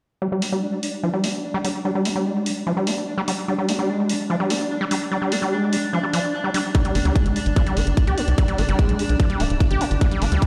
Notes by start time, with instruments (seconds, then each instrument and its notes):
0.22 acid bass G3, synth texture D4
0.32 acid bass G3
0.42 acid bass B3, open hi-hat
0.52 acid bass G3
0.62 acid bass G#3
0.83 acid bass G3, open hi-hat
1.03 acid bass F3
1.14 acid bass G3
1.24 acid bass B3, open hi-hat
1.54 acid bass G3
1.65 acid bass G3, open hi-hat
1.85 acid bass G3
1.95 acid bass G3
2.05 acid bass B3, open hi-hat
2.16 acid bass G3
2.26 acid bass G#3
2.46 acid bass G3, open hi-hat
2.67 acid bass F3
2.77 acid bass G3
2.87 acid bass B3, open hi-hat
3.18 acid bass G3
3.28 acid bass G3, open hi-hat
3.48 acid bass G3
3.58 acid bass G3
3.69 acid bass B3, open hi-hat
3.79 acid bass G3
3.89 acid bass G#3
4.09 acid bass G3, open hi-hat
4.30 acid bass F3
4.40 acid bass G3
4.50 acid bass B3, open hi-hat
4.81 acid bass G3
4.91 acid bass G3, open hi-hat
5.11 acid bass G3
5.22 acid bass G3
5.32 acid bass B3, open hi-hat
5.42 acid bass G3
5.52 acid bass G#3
5.73 acid bass G3, open hi-hat
5.93 acid bass F3
6.03 acid bass G3
6.13 acid bass F3, open hi-hat
6.44 acid bass G3
6.54 acid bass G3, open hi-hat
6.75 acid bass G3, kick, closed hi-hat
6.85 acid bass G3, closed hi-hat
6.95 analog synth bass G1, acid bass B3, open hi-hat
7.05 analog synth bass D2, acid bass G3, closed hi-hat
7.16 acid bass G#3, kick, closed hi-hat
7.26 analog synth bass G#1, closed hi-hat
7.36 acid bass G3, open hi-hat
7.46 analog synth bass G#1, closed hi-hat
7.56 acid bass F3, kick, closed hi-hat
7.67 acid bass G3, closed hi-hat
7.77 analog synth bass G1, acid bass B3, open hi-hat
7.87 analog synth bass G1, closed hi-hat
7.97 kick, closed hi-hat
8.07 analog synth bass C2, acid bass G4, closed hi-hat
8.18 acid bass G3, open hi-hat
8.28 analog synth bass C2, closed hi-hat
8.38 acid bass G3, kick, closed hi-hat
8.48 acid bass G3, closed hi-hat
8.58 analog synth bass G1, acid bass B3, open hi-hat
8.69 analog synth bass G1, acid bass G3, closed hi-hat
8.79 acid bass G#3, kick, closed hi-hat
8.89 analog synth bass B1, closed hi-hat
8.99 acid bass G3, open hi-hat
9.09 analog synth bass B1, closed hi-hat
9.20 acid bass F3, kick, closed hi-hat
9.30 acid bass G3, closed hi-hat
9.40 analog synth bass D1, acid bass B3, open hi-hat
9.50 analog synth bass D1, closed hi-hat
9.60 kick, closed hi-hat
9.71 analog synth bass G1, acid bass G4, closed hi-hat
9.81 acid bass G3, open hi-hat
9.91 analog synth bass G1, closed hi-hat
10.01 acid bass G3, kick, closed hi-hat
10.11 acid bass G3, closed hi-hat
10.22 analog synth bass G1, acid bass B3, open hi-hat
10.32 analog synth bass D2, acid bass G3, closed hi-hat
10.42 acid bass G#3, kick, closed hi-hat